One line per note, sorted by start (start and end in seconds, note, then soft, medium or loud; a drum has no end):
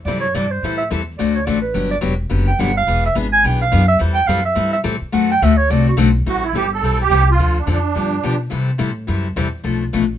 0.05 0.33 F#2 loud
0.05 0.25 C3 medium
0.05 0.25 E3 medium
0.05 0.26 G3 medium
0.05 0.26 C4 medium
0.05 0.26 E4 medium
0.05 0.26 A4 medium
0.05 0.20 D5 medium
0.20 0.36 C#5 medium
0.34 0.62 G2 medium
0.34 0.45 C3 medium
0.34 0.45 E3 medium
0.34 0.45 G3 medium
0.34 0.45 C4 medium
0.34 0.45 E4 loud
0.34 0.45 A4 loud
0.34 0.52 D5 loud
0.51 0.77 C5 medium
0.63 0.90 A2 medium
0.63 0.82 E3 medium
0.63 0.82 G3 medium
0.63 0.82 C4 medium
0.63 0.82 E4 medium
0.63 0.82 A4 medium
0.78 0.89 E5 medium
0.91 1.18 E2 medium
0.91 1.01 E3 medium
0.91 1.01 G3 medium
0.91 1.01 C4 medium
0.91 1.01 E4 medium
0.91 1.02 A4 medium
1.18 1.47 D2 medium
1.18 1.38 D3 medium
1.18 1.38 A3 medium
1.18 1.38 C4 medium
1.18 1.38 F#4 medium
1.18 1.38 A4 medium
1.18 1.37 D5 medium
1.36 1.47 C#5 medium
1.45 1.74 A1 medium
1.45 1.57 D3 medium
1.45 1.58 A3 medium
1.45 1.57 C4 medium
1.45 1.57 F#4 medium
1.45 1.58 A4 medium
1.45 1.61 D5 loud
1.62 1.89 B4 medium
1.74 2.02 G1 medium
1.74 1.93 D3 medium
1.74 1.94 F#3 medium
1.74 1.94 B3 medium
1.74 1.94 D4 medium
1.74 1.94 G4 medium
1.91 1.98 D5 loud
2.01 2.30 E1 medium
2.01 2.13 D3 medium
2.01 2.13 F#3 medium
2.01 2.13 B3 medium
2.01 2.13 D4 loud
2.01 2.13 G4 loud
2.29 2.58 F#1 loud
2.29 2.49 D3 medium
2.29 2.49 F#3 medium
2.29 2.50 B3 medium
2.29 2.50 D4 medium
2.29 2.50 G4 medium
2.47 2.61 G5 medium
2.59 2.86 G1 loud
2.59 2.70 D3 medium
2.59 2.70 F#3 medium
2.59 2.70 B3 medium
2.59 2.70 D4 medium
2.59 2.70 G4 medium
2.59 2.76 F#5 medium
2.77 3.03 F5 loud
2.87 3.15 E1 medium
2.87 3.06 E3 medium
2.87 3.07 B3 medium
2.87 3.07 D4 medium
2.87 3.07 G#4 medium
3.06 3.16 E5 medium
3.15 3.43 G#1 medium
3.15 3.26 E3 medium
3.15 3.26 B3 medium
3.15 3.26 D4 loud
3.15 3.27 G#4 loud
3.33 3.48 G#5 loud
3.44 3.71 B1 loud
3.44 3.63 E3 medium
3.44 3.63 B3 medium
3.44 3.63 D4 medium
3.44 3.64 G#4 medium
3.44 3.61 G5 medium
3.61 3.87 F5 medium
3.72 4.00 F#2 loud
3.72 3.83 E3 medium
3.72 3.83 B3 medium
3.72 3.83 D4 medium
3.72 3.83 G#4 loud
3.88 4.00 E5 loud
3.99 4.27 E2 medium
3.99 4.19 E3 medium
3.99 4.19 G3 medium
3.99 4.19 C4 medium
3.99 4.19 E4 medium
3.99 4.19 A4 medium
4.15 4.29 G5 loud
4.27 4.55 F#2 medium
4.27 4.39 E3 medium
4.27 4.39 G3 medium
4.27 4.39 C4 medium
4.27 4.40 E4 medium
4.27 4.40 A4 loud
4.27 4.44 F5 loud
4.45 4.71 E5 loud
4.55 4.84 G2 loud
4.55 4.75 E3 medium
4.55 4.75 G3 medium
4.55 4.75 C4 medium
4.55 4.76 E4 medium
4.55 4.76 A4 medium
4.73 4.80 E5 medium
4.84 5.00 A2 loud
4.84 4.95 E3 medium
4.84 4.95 G3 loud
4.84 4.95 C4 medium
4.84 4.95 E4 loud
4.84 4.95 A4 loud
5.01 muted upright bass stroke soft
5.12 5.41 F#2 medium
5.12 5.32 D3 medium
5.12 5.32 A3 medium
5.12 5.32 C4 medium
5.12 5.32 F#4 medium
5.12 5.32 A4 medium
5.12 5.29 F#5 medium
5.31 5.45 G5 loud
5.42 5.69 D2 medium
5.42 5.52 D3 medium
5.42 5.52 A3 medium
5.42 5.52 C4 medium
5.42 5.53 F#4 loud
5.42 5.53 A4 loud
5.42 5.59 E5 loud
5.57 5.72 C#5 loud
5.70 5.97 C2 medium
5.70 5.89 D3 medium
5.70 5.89 A3 medium
5.70 5.89 C4 medium
5.70 5.89 F#4 medium
5.70 5.89 A4 medium
5.70 5.87 D5 loud
5.89 5.95 F#4 medium
5.97 6.25 B1 loud
5.97 6.08 D3 loud
5.97 6.08 A3 loud
5.97 6.08 C4 loud
5.97 6.08 F#4 loud
5.97 6.08 A4 loud
6.26 6.52 A1 medium
6.26 6.45 E3 medium
6.26 6.45 G3 medium
6.26 6.45 C4 medium
6.26 6.45 E4 medium
6.26 6.44 F#4 medium
6.26 6.45 A4 medium
6.44 6.55 E4 medium
6.53 6.81 G1 medium
6.53 6.65 E3 medium
6.53 6.65 G3 medium
6.53 6.65 C4 medium
6.53 6.65 E4 medium
6.53 6.71 G4 medium
6.53 6.65 A4 medium
6.73 6.98 A4 medium
6.82 7.09 B1 medium
6.82 7.02 E3 medium
6.82 7.02 G3 medium
6.82 7.02 C4 medium
6.82 7.02 E4 medium
6.82 7.03 A4 medium
7.02 7.29 G4 loud
7.10 7.37 C2 medium
7.10 7.21 E3 medium
7.10 7.21 G3 medium
7.10 7.21 C4 medium
7.10 7.21 E4 medium
7.10 7.22 A4 medium
7.31 7.58 F4 medium
7.38 7.66 D2 medium
7.38 7.58 D3 medium
7.38 7.58 F3 medium
7.38 7.58 C4 medium
7.38 7.58 D4 medium
7.38 7.58 A4 medium
7.59 7.68 D4 medium
7.67 7.94 F2 medium
7.67 7.77 D3 medium
7.67 7.77 F3 medium
7.67 7.77 C4 medium
7.67 7.78 D4 medium
7.67 7.78 A4 medium
7.71 8.38 D4 medium
7.95 8.23 G2 medium
7.95 8.14 D3 medium
7.95 8.14 F3 medium
7.95 8.14 B3 medium
7.95 8.15 D4 medium
7.95 8.15 G4 medium
8.23 8.51 B2 medium
8.23 8.34 D3 medium
8.23 8.34 F3 medium
8.23 8.34 B3 medium
8.23 8.34 D4 medium
8.23 8.34 G4 loud
8.50 8.70 C3 medium
8.50 8.78 C3 medium
8.50 8.70 E3 medium
8.50 8.70 G3 medium
8.50 8.70 C4 medium
8.50 8.70 E4 medium
8.50 8.70 A4 medium
8.78 9.07 A2 medium
8.78 8.90 C3 medium
8.78 8.90 E3 medium
8.78 8.90 G3 medium
8.78 8.90 C4 medium
8.78 8.90 E4 medium
8.78 8.90 A4 medium
9.07 9.36 F#2 medium
9.07 9.26 C3 medium
9.07 9.26 E3 medium
9.07 9.27 G3 medium
9.07 9.27 C4 medium
9.07 9.27 E4 medium
9.07 9.27 A4 medium
9.36 9.64 E2 medium
9.36 9.47 C3 medium
9.36 9.47 E3 medium
9.36 9.47 G3 medium
9.36 9.47 C4 medium
9.36 9.47 E4 medium
9.36 9.47 A4 loud
9.64 9.92 B1 medium
9.64 9.83 B2 medium
9.64 9.83 F3 medium
9.64 9.83 A3 medium
9.64 9.83 D4 medium
9.64 9.83 A4 medium
9.93 10.18 A1 medium
9.93 10.03 B2 medium
9.93 10.03 F3 medium
9.93 10.04 A3 medium
9.93 10.03 D4 medium
9.93 10.04 A4 medium